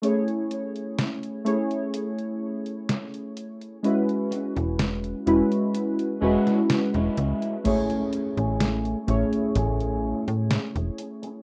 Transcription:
<<
  \new Staff \with { instrumentName = "Synth keys" } { \time 4/4 \key a \lydian \tempo 4 = 63 <a cis' e' gis' cis''>4. <a cis' e' gis' cis''>2~ <a cis' e' gis' cis''>8 | <gis cis' e' fis' b'>4. <gis cis' e' fis' b'>4 <gis cis' e' fis' b'>4. | <a cis' e' gis' cis''>4. <a cis' e' gis' cis''>2~ <a cis' e' gis' cis''>8 | }
  \new Staff \with { instrumentName = "Clean electric guitar" } { \time 4/4 \key a \lydian r1 | r2 r8 <gis cis' fis'>8 r16 <gis cis' e'>8. | <a cis' gis'>8 r16 <a cis' gis'>8. r8 <a cis' gis'>8. r4 r16 | }
  \new Staff \with { instrumentName = "FM bass" } { \clef bass \time 4/4 \key a \lydian r1 | r8. e,,8 r16 e,,16 r8. e,,16 r8 e,,16 cis,16 r16 | r8. a,,8 r16 a,,16 r16 a,,8 r16 a,16 r16 e,,16 r8 | }
  \new DrumStaff \with { instrumentName = "Drums" } \drummode { \time 4/4 hh16 hh16 hh16 hh16 <hh sn>16 hh16 hh16 hh16 hh16 hh8 hh16 <hh sn>16 hh16 hh16 hh16 | hh16 hh16 hh16 hh16 <hh sn>16 hh16 hh16 hh16 hh16 hh8 <hh sn>16 <hh sn>16 hh16 hh16 hh16 | <cymc hh bd>16 hh16 hh16 hh16 <hh sn>16 hh16 <hh bd>16 hh16 <hh bd>16 hh8 hh16 <hh sn>16 hh16 hh16 hh16 | }
>>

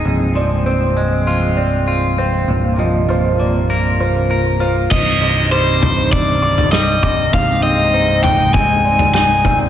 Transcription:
<<
  \new Staff \with { instrumentName = "Overdriven electric guitar" } { \time 4/4 \key c \minor \tempo 4 = 99 r1 | r1 | ees''4 c''4 d''4 ees''4 | f''8 ees''4 g''8 aes''4 aes''8. r16 | }
  \new Staff \with { instrumentName = "Felt piano" } { \time 4/4 \key c \minor r8 d''8 c''8 ees''4 d''4 c''8 | r8 ees''8 c''8 d''4 c''4 c''8 | r8 ees''8 c''8 ees'4 d'''4 d'''8 | r8 ees''8 c''8 ees''4 d''4 d''8 | }
  \new Staff \with { instrumentName = "Clean electric guitar" } { \time 4/4 \key c \minor f,8 f8 c'8 aes8 f'8 c'8 f'8 c'8 | bes,8 f8 f'8 bes8 bes'8 f'8 bes'8 f'8 | c,8 c8 g8 g,8 c8 g,8 g8 c8 | aes,8 c'8 ees'8 aes8 c'8 aes8 ees'8 c'8 | }
  \new Staff \with { instrumentName = "Analog synth pad" } { \clef bass \time 4/4 \key c \minor <f aes c'>1 | <c bes f'>1 | ees1 | <c aes ees'>1 | }
  \new Staff \with { instrumentName = "Picked electric bass" } { \clef bass \time 4/4 \key c \minor c,,1 | c,,1 | c,,1 | c,,1 | }
  \new DrumStaff \with { instrumentName = "Drums" } \drummode { \time 4/4 r4 r4 r4 r4 | r4 r4 r4 r4 | <cymc bd tomfh>4 r8 tomfh8 <bd tomfh>8. tomfh16 sn8 <bd tomfh>8 | <bd tomfh>4 r8 tomfh8 <bd tomfh>8. tomfh16 sn8 <bd tomfh>8 | }
>>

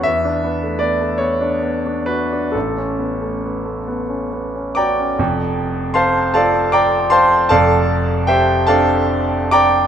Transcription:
<<
  \new Staff \with { instrumentName = "Grand piano" } { \time 6/8 \key a \major \tempo 4. = 50 e''4 d''8 cis''4 b'8 | a'4. r4 <d'' g'' bes'' d'''>8~ | \key f \major <d'' g'' bes'' d'''>4 <c'' f'' a'' c'''>8 <a' d'' f'' a''>8 <d'' g'' bes'' d'''>8 <c'' f'' a'' c'''>8 | <a' d'' f'' a''>4 <g' c'' e'' g''>8 <a' d'' f'' a''>4 <d'' g'' bes'' d'''>8 | }
  \new Staff \with { instrumentName = "Grand piano" } { \time 6/8 \key a \major e,16 d'16 b16 a16 b16 a16 b16 d'16 b16 d'16 fis'16 d'16 | a,,16 cis'16 b16 a16 b16 a16 b16 cis'16 b16 cis'16 fis'16 cis'16 | \key f \major <f,, f,>4. <c' f'>4. | <f,, f,>4. <c' d'>4. | }
>>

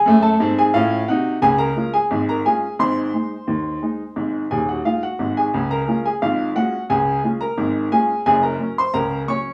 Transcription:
<<
  \new Staff \with { instrumentName = "Upright piano" } { \time 2/4 \key des \major \tempo 4 = 88 <aes' aes''>16 <a' a''>8 <aes' aes''>16 <f' f''>8 <ges' ges''>8 | <aes' aes''>16 <bes' bes''>8 <aes' aes''>8 <bes' bes''>16 <aes' aes''>8 | <c'' c'''>2~ | <c'' c'''>8 <aes' aes''>16 <ges' ges''>16 <f' f''>16 <ges' ges''>8 <aes' aes''>16~ |
<aes' aes''>16 <bes' bes''>8 <aes' aes''>16 <f' f''>8 <ges' ges''>8 | <aes' aes''>8. <bes' bes''>8. <aes' aes''>8 | <aes' aes''>16 <bes' bes''>8 <c'' c'''>16 <bes' bes''>8 <des'' des'''>8 | }
  \new Staff \with { instrumentName = "Upright piano" } { \clef bass \time 2/4 \key des \major <ges, a>8 <aes, c'>8 <a, des'>8 <c ees'>8 | <des, des>8 <aes des' f'>8 <aes,, aes,>8 <aes des' f'>8 | <aes,, aes,>8 <aes ees'>8 <ees, ees>8 <aes ees'>8 | <aes,, aes,>8 <ees,, ees,>8 <aes ees'>8 <aes,, aes,>8 |
<des, des>8 <aes des' f'>8 <aes,, aes,>8 <aes des' f'>8 | <des, des>8 <aes des' f'>8 <aes,, aes,>8 <aes des' f'>8 | <ges,, ges,>8 <ges des'>8 <des, des>8 <ges des'>8 | }
>>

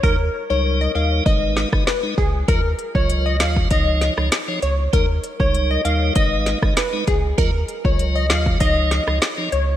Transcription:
<<
  \new Staff \with { instrumentName = "Synth pluck" } { \time 4/4 \key aes \dorian \tempo 4 = 98 bes'8 r16 des''16 r16 ees''16 f''16 r16 ees''8. r16 ces''16 r16 aes'16 r16 | bes'8 r16 des''16 r16 ees''16 f''16 r16 ees''8. r8. des''16 r16 | bes'8 r16 des''16 r16 ees''16 f''16 r16 ees''8. r16 ces''16 r16 aes'16 r16 | bes'8 r16 des''16 r16 ees''16 f''16 r16 ees''8. r8. des''16 r16 | }
  \new Staff \with { instrumentName = "Tonewheel organ" } { \time 4/4 \key aes \dorian <g ees' bes'>16 r8 <g ees' bes'>8. <g ees' bes'>8 <aes ees' ces''>8. <aes ees' ces''>16 r16 <aes ees' ces''>16 r8 | <ges f' ees''>16 r8 <ges f' ees''>8. <ges f' ees''>8 <f ees' des''>8. <f ees' des''>16 r16 <f ees' des''>16 r8 | <g ees' bes'>16 r8 <g ees' bes'>8. <g ees' bes'>8 <aes ees' ces''>8. <aes ees' ces''>16 r16 <aes ees' ces''>16 r8 | <ges f' ees''>16 r8 <ges f' ees''>8. <ges f' ees''>8 <f ees' des''>8. <f ees' des''>16 r16 <f ees' des''>16 r8 | }
  \new Staff \with { instrumentName = "Sub bass" } { \clef bass \time 4/4 \key aes \dorian ees,8 r16 des,8. ees,8 aes,,8. aes,,16 r8 des,8 | ees,8 r16 des,8. ees,8 des,8. des,16 r8 des,8 | ees,8 r16 des,8. ees,8 aes,,8. aes,,16 r8 des,8 | ees,8 r16 des,8. ees,8 des,8. des,16 r8 des,8 | }
  \new DrumStaff \with { instrumentName = "Drums" } \drummode { \time 4/4 bd4 r4 bd8 sn16 <bd ss>16 sn8 bd8 | <hh bd>8 hh16 bd16 hh8 <hh sn>16 bd16 <hh bd>8 <hh sn>16 ss16 <hh sn>8 hh8 | <hh bd>8 hh16 bd16 hh8 hh8 <hh bd>8 <hh sn>16 <bd ss>16 <hh sn>8 <hh bd>8 | <hh bd>8 hh16 bd16 hh8 <hh sn>16 bd16 <hh bd>8 <hh sn>16 ss16 <hh sn>8 hh8 | }
>>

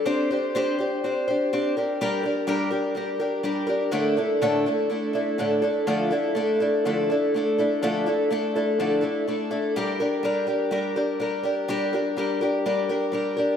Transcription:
\new Staff \with { instrumentName = "Twelve-string acoustic guitar" } { \time 4/4 \key g \dorian \tempo 4 = 124 <c' d' g' c''>8 <d' g' c''>8 <c' d' g' c''>8 <d' g' c''>8 <c' d' g' c''>8 <d' g' c''>8 <c' d' g' c''>8 <d' g' bes'>8 | <g d' g' bes'>8 <d' g' bes'>8 <g d' g' bes'>8 <d' g' bes'>8 <g d' g' bes'>8 <d' g' bes'>8 <g d' g' bes'>8 <d' g' bes'>8 | <a, d a d' e' a'>8 <a d' e' a'>8 <a, d a d' e' a'>8 <a d' e' a'>8 <a d' e' a'>8 <a d' e' a'>8 <a, d a d' e' a'>8 <a d' e' a'>8 | <d f a d' e' a'>8 <a d' e' a'>8 <a d' e' a'>8 <a d' e' a'>8 <d f a d' e' a'>8 <a d' e' a'>8 <a d' e' a'>8 <a d' e' a'>8 |
<d f a d' e' a'>8 <a d' e' a'>8 <a d' e' a'>8 <a d' e' a'>8 <d f a d' e' a'>8 <a d' e' a'>8 <a d' e' a'>8 <a d' e' a'>8 | <g d' g' bes'>8 <d' g' bes'>8 <g d' g' bes'>8 <d' g' bes'>8 <g d' g' bes'>8 <d' g' bes'>8 <g d' g' bes'>8 <d' g' bes'>8 | <g d' g' bes'>8 <d' g' bes'>8 <g d' g' bes'>8 <d' g' bes'>8 <g d' g' bes'>8 <d' g' bes'>8 <g d' g' bes'>8 <d' g' bes'>8 | }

